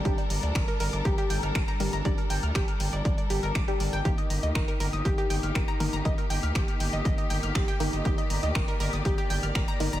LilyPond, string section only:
\new Staff \with { instrumentName = "String section" } { \time 4/4 \key ees \lydian \tempo 4 = 120 << { a'1~ | a'1 | ees'1~ | ees'1 |
d''1 | } \\ { <g d' bes'>1~ | <g d' bes'>1 | <ees bes g'>1~ | <ees bes g'>1~ |
<ees bes g'>1 | } >> }